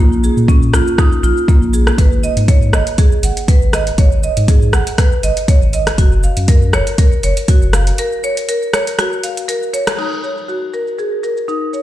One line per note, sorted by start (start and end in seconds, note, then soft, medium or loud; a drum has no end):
0.00 0.29 A#1 loud
0.00 0.11 A#3 loud
0.12 cabasa soft
0.24 0.37 G#4 medium
0.24 cabasa medium
0.37 0.75 A#2 medium
0.37 cabasa soft
0.48 0.61 C#4 medium
0.48 kick loud
0.48 cabasa medium
0.62 cabasa soft
0.73 0.82 A#1 medium
0.73 0.86 F4 loud
0.73 cross-stick medium
0.73 cabasa medium
0.87 cabasa soft
0.98 1.11 D#4 loud
0.98 kick loud
0.98 cross-stick medium
0.98 cabasa medium
1.12 cabasa soft
1.23 1.32 A#1 loud
1.23 1.36 F4 medium
1.23 cabasa loud
1.37 cabasa soft
1.48 1.61 A#3 loud
1.48 kick loud
1.48 cabasa medium
1.62 1.91 A#1 medium
1.62 cabasa soft
1.73 1.86 G#4 medium
1.73 cabasa medium
1.87 cross-stick medium
1.87 cabasa soft
1.98 2.29 G#1 loud
1.98 2.11 B4 medium
1.98 kick loud
1.98 closed hi-hat medium
1.98 cabasa medium
2.12 cabasa soft
2.23 2.36 D#5 loud
2.23 cabasa medium
2.37 2.75 G#2 medium
2.37 closed hi-hat soft
2.37 cabasa soft
2.48 2.61 C#5 medium
2.48 kick loud
2.48 closed hi-hat medium
2.48 cabasa medium
2.62 cabasa soft
2.73 2.82 G#1 medium
2.73 2.86 D#5 loud
2.73 cross-stick medium
2.73 cabasa medium
2.87 closed hi-hat soft
2.87 cabasa soft
2.98 3.12 G#4 loud
2.98 kick loud
2.98 closed hi-hat medium
2.98 cabasa medium
3.12 cabasa soft
3.23 3.32 G#1 loud
3.23 3.37 F#5 medium
3.23 closed hi-hat medium
3.23 cabasa medium
3.37 closed hi-hat soft
3.37 cabasa soft
3.48 3.62 B4 loud
3.48 kick loud
3.48 closed hi-hat medium
3.48 cabasa medium
3.62 3.91 G#1 medium
3.62 cabasa soft
3.73 3.87 D#5 loud
3.73 cross-stick medium
3.73 closed hi-hat soft
3.73 cabasa medium
3.87 closed hi-hat soft
3.87 cabasa soft
3.98 4.29 G#1 loud
3.98 4.11 C#5 loud
3.98 kick loud
3.98 closed hi-hat medium
3.98 cabasa soft
4.12 cabasa soft
4.23 4.36 D#5 loud
4.23 cabasa medium
4.37 4.75 G#2 medium
4.37 closed hi-hat soft
4.37 cabasa soft
4.48 4.62 G#4 loud
4.48 kick loud
4.48 closed hi-hat medium
4.48 cabasa soft
4.62 cabasa soft
4.73 4.82 G#1 loud
4.73 4.87 F#5 medium
4.73 cross-stick medium
4.73 cabasa medium
4.87 closed hi-hat soft
4.87 cabasa soft
4.98 5.12 B4 loud
4.98 kick loud
4.98 cross-stick medium
4.98 closed hi-hat medium
4.98 cabasa medium
5.12 cabasa soft
5.23 5.32 G#1 loud
5.23 5.36 D#5 loud
5.23 closed hi-hat medium
5.23 cabasa medium
5.37 closed hi-hat soft
5.37 cabasa soft
5.48 5.61 C#5 loud
5.48 kick loud
5.48 closed hi-hat medium
5.48 cabasa soft
5.62 5.91 G#1 medium
5.62 cabasa soft
5.73 5.86 D#5 loud
5.73 closed hi-hat soft
5.73 cabasa medium
5.87 cross-stick medium
5.87 closed hi-hat soft
5.87 cabasa soft
5.98 6.29 F#1 loud
5.98 6.12 F#4 loud
5.98 kick loud
5.98 closed hi-hat medium
5.98 cabasa soft
6.12 cabasa soft
6.23 6.37 F5 medium
6.23 cabasa medium
6.37 6.75 F#2 medium
6.37 closed hi-hat soft
6.37 cabasa soft
6.48 6.62 A#4 loud
6.48 kick loud
6.48 closed hi-hat medium
6.48 cabasa soft
6.62 cabasa soft
6.73 6.82 F#1 medium
6.73 6.87 C#5 loud
6.73 cross-stick medium
6.73 cabasa medium
6.87 closed hi-hat soft
6.87 cabasa soft
6.98 7.11 A#4 loud
6.98 kick loud
6.98 closed hi-hat medium
6.98 cabasa medium
7.12 cabasa soft
7.23 7.32 F#1 loud
7.23 7.36 C#5 loud
7.23 closed hi-hat medium
7.23 cabasa medium
7.37 closed hi-hat soft
7.37 cabasa soft
7.48 7.62 F#4 loud
7.48 kick loud
7.48 closed hi-hat medium
7.48 cabasa soft
7.62 7.92 F#1 medium
7.62 cabasa soft
7.73 7.87 F5 medium
7.73 cross-stick medium
7.73 closed hi-hat soft
7.73 cabasa medium
7.87 closed hi-hat soft
7.87 cabasa soft
7.98 8.12 A#4 loud
7.98 closed hi-hat medium
7.98 cabasa medium
8.12 cabasa soft
8.24 8.37 C#5 loud
8.24 cabasa medium
8.37 closed hi-hat soft
8.37 cabasa soft
8.49 8.61 A#4 loud
8.49 closed hi-hat medium
8.49 cabasa soft
8.62 cabasa soft
8.73 8.86 C#5 loud
8.73 cross-stick medium
8.73 closed hi-hat soft
8.73 cabasa medium
8.87 closed hi-hat soft
8.87 cabasa soft
8.99 9.11 F#4 loud
8.99 cross-stick medium
8.99 closed hi-hat medium
8.99 cabasa medium
9.13 cabasa soft
9.24 9.36 F5 medium
9.24 closed hi-hat medium
9.24 cabasa medium
9.37 closed hi-hat soft
9.37 cabasa soft
9.48 9.61 A#4 loud
9.48 closed hi-hat medium
9.48 cabasa medium
9.63 cabasa soft
9.74 9.86 C#5 loud
9.74 closed hi-hat soft
9.74 cabasa medium
9.87 cross-stick medium
9.87 closed hi-hat soft
9.87 cabasa soft
9.98 10.11 D#4 medium
9.98 crash medium
9.98 cabasa soft
10.12 cabasa soft
10.24 10.37 C#5 medium
10.24 cabasa medium
10.37 cabasa soft
10.48 10.61 F#4 medium
10.48 cabasa soft
10.73 10.86 A#4 medium
10.73 cabasa medium
10.87 cabasa soft
10.99 11.11 G#4 medium
10.99 cabasa soft
11.23 11.36 A#4 medium
11.23 cabasa medium
11.37 cabasa soft
11.48 11.61 D#4 loud
11.48 cabasa soft
11.73 11.82 C#5 medium
11.73 cabasa medium